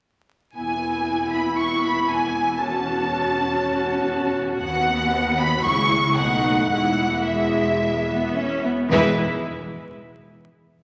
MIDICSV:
0, 0, Header, 1, 7, 480
1, 0, Start_track
1, 0, Key_signature, 4, "major"
1, 0, Tempo, 510204
1, 528, Time_signature, 4, 2, 24, 8
1, 5803, Tempo, 547945
1, 9887, End_track
2, 0, Start_track
2, 0, Title_t, "Violin section"
2, 0, Program_c, 0, 48
2, 534, Note_on_c, 0, 80, 51
2, 1219, Note_off_c, 0, 80, 0
2, 1257, Note_on_c, 0, 83, 47
2, 1333, Note_off_c, 0, 83, 0
2, 1507, Note_on_c, 0, 85, 56
2, 1735, Note_off_c, 0, 85, 0
2, 1748, Note_on_c, 0, 83, 55
2, 1975, Note_off_c, 0, 83, 0
2, 1982, Note_on_c, 0, 80, 51
2, 2446, Note_off_c, 0, 80, 0
2, 2458, Note_on_c, 0, 81, 63
2, 4083, Note_off_c, 0, 81, 0
2, 4345, Note_on_c, 0, 78, 76
2, 5030, Note_off_c, 0, 78, 0
2, 5070, Note_on_c, 0, 83, 79
2, 5313, Note_off_c, 0, 83, 0
2, 5317, Note_on_c, 0, 85, 102
2, 5796, Note_off_c, 0, 85, 0
2, 5803, Note_on_c, 0, 78, 82
2, 6266, Note_off_c, 0, 78, 0
2, 6276, Note_on_c, 0, 78, 69
2, 6748, Note_off_c, 0, 78, 0
2, 6759, Note_on_c, 0, 76, 59
2, 7969, Note_off_c, 0, 76, 0
2, 8212, Note_on_c, 0, 76, 83
2, 8478, Note_off_c, 0, 76, 0
2, 9887, End_track
3, 0, Start_track
3, 0, Title_t, "Violin section"
3, 0, Program_c, 1, 48
3, 528, Note_on_c, 1, 80, 43
3, 1216, Note_off_c, 1, 80, 0
3, 1244, Note_on_c, 1, 83, 42
3, 1488, Note_on_c, 1, 85, 47
3, 1489, Note_off_c, 1, 83, 0
3, 1726, Note_on_c, 1, 83, 49
3, 1730, Note_off_c, 1, 85, 0
3, 1964, Note_off_c, 1, 83, 0
3, 1967, Note_on_c, 1, 80, 55
3, 2446, Note_on_c, 1, 81, 46
3, 2447, Note_off_c, 1, 80, 0
3, 4110, Note_off_c, 1, 81, 0
3, 4344, Note_on_c, 1, 78, 69
3, 5029, Note_off_c, 1, 78, 0
3, 5062, Note_on_c, 1, 83, 80
3, 5300, Note_on_c, 1, 85, 75
3, 5309, Note_off_c, 1, 83, 0
3, 5787, Note_off_c, 1, 85, 0
3, 5794, Note_on_c, 1, 78, 71
3, 6252, Note_off_c, 1, 78, 0
3, 6262, Note_on_c, 1, 78, 64
3, 6741, Note_off_c, 1, 78, 0
3, 6754, Note_on_c, 1, 76, 50
3, 7942, Note_off_c, 1, 76, 0
3, 8204, Note_on_c, 1, 71, 71
3, 8474, Note_off_c, 1, 71, 0
3, 9887, End_track
4, 0, Start_track
4, 0, Title_t, "French horn section"
4, 0, Program_c, 2, 60
4, 527, Note_on_c, 2, 59, 43
4, 528, Note_on_c, 2, 64, 39
4, 2412, Note_off_c, 2, 59, 0
4, 2412, Note_off_c, 2, 64, 0
4, 2441, Note_on_c, 2, 61, 43
4, 2444, Note_on_c, 2, 66, 48
4, 4308, Note_off_c, 2, 61, 0
4, 4349, Note_on_c, 2, 59, 60
4, 5273, Note_off_c, 2, 66, 0
4, 5304, Note_on_c, 2, 64, 58
4, 5308, Note_on_c, 2, 56, 53
4, 5313, Note_off_c, 2, 59, 0
4, 5799, Note_off_c, 2, 64, 0
4, 5799, Note_on_c, 2, 63, 58
4, 5801, Note_off_c, 2, 56, 0
4, 5802, Note_on_c, 2, 57, 57
4, 6265, Note_off_c, 2, 57, 0
4, 6270, Note_on_c, 2, 56, 56
4, 6273, Note_off_c, 2, 63, 0
4, 6273, Note_on_c, 2, 64, 55
4, 7933, Note_off_c, 2, 64, 0
4, 7965, Note_off_c, 2, 56, 0
4, 8208, Note_on_c, 2, 56, 67
4, 8213, Note_on_c, 2, 64, 67
4, 8409, Note_off_c, 2, 56, 0
4, 8412, Note_off_c, 2, 64, 0
4, 9887, End_track
5, 0, Start_track
5, 0, Title_t, "Viola section"
5, 0, Program_c, 3, 48
5, 529, Note_on_c, 3, 64, 45
5, 531, Note_on_c, 3, 59, 44
5, 2413, Note_off_c, 3, 64, 0
5, 2414, Note_off_c, 3, 59, 0
5, 2448, Note_on_c, 3, 66, 52
5, 2449, Note_on_c, 3, 61, 53
5, 4312, Note_off_c, 3, 61, 0
5, 4351, Note_on_c, 3, 59, 64
5, 5275, Note_off_c, 3, 66, 0
5, 5276, Note_off_c, 3, 59, 0
5, 5308, Note_on_c, 3, 56, 67
5, 5308, Note_on_c, 3, 64, 63
5, 5766, Note_off_c, 3, 64, 0
5, 5767, Note_off_c, 3, 56, 0
5, 5805, Note_on_c, 3, 57, 58
5, 5805, Note_on_c, 3, 63, 64
5, 6243, Note_off_c, 3, 57, 0
5, 6243, Note_off_c, 3, 63, 0
5, 6278, Note_on_c, 3, 56, 54
5, 6281, Note_on_c, 3, 64, 56
5, 6680, Note_off_c, 3, 56, 0
5, 6682, Note_off_c, 3, 64, 0
5, 6758, Note_on_c, 3, 56, 62
5, 7448, Note_off_c, 3, 56, 0
5, 7482, Note_on_c, 3, 59, 62
5, 7725, Note_off_c, 3, 59, 0
5, 7728, Note_on_c, 3, 61, 68
5, 7970, Note_off_c, 3, 61, 0
5, 7971, Note_on_c, 3, 59, 56
5, 8211, Note_on_c, 3, 56, 76
5, 8211, Note_on_c, 3, 64, 89
5, 8212, Note_off_c, 3, 59, 0
5, 8477, Note_off_c, 3, 56, 0
5, 8477, Note_off_c, 3, 64, 0
5, 9887, End_track
6, 0, Start_track
6, 0, Title_t, "Cello section"
6, 0, Program_c, 4, 48
6, 524, Note_on_c, 4, 40, 46
6, 4310, Note_off_c, 4, 40, 0
6, 4347, Note_on_c, 4, 39, 74
6, 5293, Note_off_c, 4, 39, 0
6, 5311, Note_on_c, 4, 49, 64
6, 5799, Note_on_c, 4, 47, 58
6, 5803, Note_off_c, 4, 49, 0
6, 6273, Note_off_c, 4, 47, 0
6, 6274, Note_on_c, 4, 40, 62
6, 7986, Note_off_c, 4, 40, 0
6, 8211, Note_on_c, 4, 40, 97
6, 8477, Note_off_c, 4, 40, 0
6, 9887, End_track
7, 0, Start_track
7, 0, Title_t, "Double bass section"
7, 0, Program_c, 5, 48
7, 526, Note_on_c, 5, 28, 46
7, 4311, Note_off_c, 5, 28, 0
7, 4347, Note_on_c, 5, 39, 65
7, 5293, Note_off_c, 5, 39, 0
7, 5309, Note_on_c, 5, 37, 61
7, 5802, Note_off_c, 5, 37, 0
7, 5805, Note_on_c, 5, 35, 58
7, 6272, Note_on_c, 5, 28, 64
7, 6276, Note_off_c, 5, 35, 0
7, 7985, Note_off_c, 5, 28, 0
7, 8210, Note_on_c, 5, 28, 92
7, 8477, Note_off_c, 5, 28, 0
7, 9887, End_track
0, 0, End_of_file